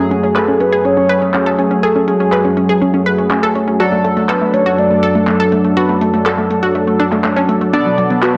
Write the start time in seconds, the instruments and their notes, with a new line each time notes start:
Already playing: supersaw synth F#2 F#3 A3 G#4, analog polysynth F#3 A3 G#4
0.11 synth pluck C#4, closed hi-hat
0.23 synth pluck C#4, closed hi-hat
0.36 soft synth lead A4, synth pluck B4, clap, closed hi-hat
0.48 synth pluck C#4, closed hi-hat
0.60 synth pluck C#4, soft synth lead B4, closed hi-hat
0.73 synth pluck G#4, closed hi-hat
0.85 synth pluck C#4, soft synth lead C#5, closed hi-hat
0.97 synth pluck C#4, closed hi-hat
1.09 synth pluck B4, closed hi-hat
1.22 synth pluck C#4, closed hi-hat
1.34 synth pluck C#4, clap, closed hi-hat
1.46 synth pluck A4
1.59 synth pluck C#4, closed hi-hat
1.71 synth pluck C#4, closed hi-hat
1.83 synth pluck G#4, soft synth lead A4, closed hi-hat
1.96 synth pluck C#4, closed hi-hat
2.08 synth pluck C#4, soft synth lead G#4, closed hi-hat
2.20 synth pluck C#4, closed hi-hat
2.32 synth pluck B4, clap
2.45 synth pluck C#4, closed hi-hat
2.57 synth pluck C#4, closed hi-hat
2.69 synth pluck G#4, closed hi-hat
2.82 synth pluck C#4, closed hi-hat
2.94 synth pluck C#4, closed hi-hat
3.06 synth pluck B4, closed hi-hat
3.18 synth pluck C#4, closed hi-hat
3.31 synth pluck C#4, clap, closed hi-hat
3.43 synth pluck A4
3.55 synth pluck C#4, closed hi-hat
3.68 synth pluck C#4, closed hi-hat
3.80 analog polysynth F#3 D4 A4, supersaw synth D4 A4, synth pluck F#4, closed hi-hat
3.92 synth pluck A3, closed hi-hat
4.04 synth pluck A3, closed hi-hat
4.17 synth pluck A3, closed hi-hat
4.29 synth pluck A4, soft synth lead B4, clap
4.41 synth pluck A3, closed hi-hat
4.54 synth pluck A3, soft synth lead C#5, closed hi-hat
4.66 synth pluck F#4, closed hi-hat
4.78 synth pluck A3, soft synth lead D5, closed hi-hat
4.91 synth pluck A3, closed hi-hat
5.03 synth pluck A4, closed hi-hat
5.15 synth pluck A3, closed hi-hat
5.27 synth pluck A3, clap, closed hi-hat
5.40 synth pluck A4
5.52 synth pluck A3, closed hi-hat
5.64 synth pluck A3, closed hi-hat
5.77 synth pluck F#4, soft synth lead B4, closed hi-hat
5.89 synth pluck A3, closed hi-hat
6.01 synth pluck A3, soft synth lead A4, closed hi-hat
6.14 synth pluck A3, closed hi-hat
6.26 synth pluck A4, clap, closed hi-hat
6.38 synth pluck A3, closed hi-hat
6.50 synth pluck A3, closed hi-hat
6.63 synth pluck F#4, closed hi-hat
6.75 synth pluck A3, closed hi-hat
6.87 synth pluck A3, closed hi-hat
7.00 synth pluck D4, closed hi-hat
7.12 synth pluck A3, clap, closed hi-hat
7.24 synth pluck A3, clap, closed hi-hat
7.36 synth pluck C#4, closed hi-hat
7.49 synth pluck A3, closed hi-hat
7.61 synth pluck A3, closed hi-hat
7.73 supersaw synth B2 F#3, analog polysynth B3 A4 D5, synth pluck D4, closed hi-hat, high conga
7.86 synth pluck F#3, closed hi-hat
7.98 synth pluck F#3, closed hi-hat
8.10 synth pluck F#3, closed hi-hat, high conga
8.22 synth pluck F#4, soft synth lead B4, clap, closed hi-hat